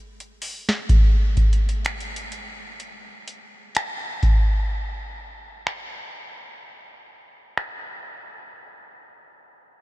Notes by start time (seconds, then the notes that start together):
0.20 closed hi-hat
0.42 open hi-hat
0.69 snare
0.89 kick, closed hi-hat
1.37 kick, closed hi-hat
1.53 closed hi-hat
1.69 closed hi-hat
1.85 finger snap, closed hi-hat
2.00 closed hi-hat
2.16 closed hi-hat
2.32 closed hi-hat
2.80 closed hi-hat
3.28 closed hi-hat
3.75 finger snap, closed hi-hat
4.23 kick, closed hi-hat
5.67 finger snap
7.57 finger snap